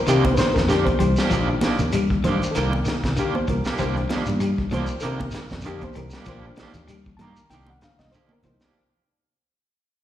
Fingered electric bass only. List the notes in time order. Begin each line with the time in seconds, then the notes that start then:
0.08 C3
0.56 F2
1.01 C2
1.31 A#1
1.80 D#2
2.25 G2
2.57 C2
3.04 C2
3.36 muted fingered electric bass stroke
3.48 C2
3.67 muted fingered electric bass stroke
3.80 C2
4.12 muted fingered electric bass stroke
4.28 G2
4.73 C2
5.04 C3
5.52 F2
5.97 C2
6.27 A#1
6.74 D#2
7.19 G2
7.51 C2
7.99 C2
8.32 muted fingered electric bass stroke
8.44 C2
8.63 muted fingered electric bass stroke